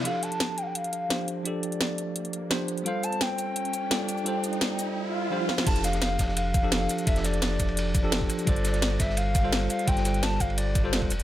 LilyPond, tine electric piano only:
\new Staff \with { instrumentName = "Tine electric piano" } { \time 4/4 \key f \major \tempo 4 = 171 <f d' g' a'>2. <f d' g' c''>4 | <f d' g' a'>2. <f d' g' c''>4 | <g f' a' c''>2. <g f' a' d''>4 | <g f' a' c''>2. <f d' g' c''>4 |
<f d' g' a'>2~ <f d' g' a'>8. <f d' g' a'>16 r4 | <f d' g' a'>2~ <f d' g' a'>8. <f d' g' a'>16 r4 | <g f' a' c''>2~ <g f' a' c''>8. <g f' a' c''>16 r4 | <g f' a' c''>2~ <g f' a' c''>8. <g f' a' c''>16 r4 | }